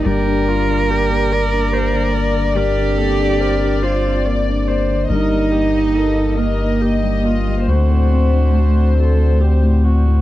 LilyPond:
<<
  \new Staff \with { instrumentName = "Violin section" } { \time 6/8 \key g \minor \tempo 4. = 47 d''2.~ | d''2. | ees''4. ees''4. | c''2~ c''8. r16 | }
  \new Staff \with { instrumentName = "Viola" } { \time 6/8 \key g \minor g'8 f'8 g'8 d''8 c''8 d''8 | bes'8 a'8 bes'8 c''8 d''8 c''8 | bes'8 g'8 a'8 bes'8 g'8 f'8 | fis'4. a'8 g'8 fis'8 | }
  \new Staff \with { instrumentName = "Analog synth pad" } { \time 6/8 \key g \minor << { <g' d''>2.~ | <g' d''>2. | <g' ees''>2. | <d'' fis''>2. | } \\ { bes2. | c'2. | bes2. | c'2. | } >> }
  \new Staff \with { instrumentName = "Cello" } { \time 6/8 \key g \minor bes'2. | g'4. f'8 r4 | ees'4. bes4. | a2~ a8 r8 | }
  \new Staff \with { instrumentName = "Grand piano" } { \time 6/8 \key g \minor g,16 d16 bes16 d'16 bes'16 d'16 bes'16 d'16 bes16 d16 bes16 d16 | g,16 d16 bes16 d'16 c''16 d'16 c''16 d'16 bes16 d16 bes16 d16 | g,16 g16 bes16 ees'16 bes'16 ees'16 bes'16 ees'16 bes16 g16 bes16 g16 | d,16 a,16 c'16 d'16 fis'16 d'16 fis'16 d'16 c'16 a,16 c'16 a,16 | }
  \new Staff \with { instrumentName = "Sub bass" } { \clef bass \time 6/8 \key g \minor g,,2.~ | g,,2. | g,,2. | d,2. | }
>>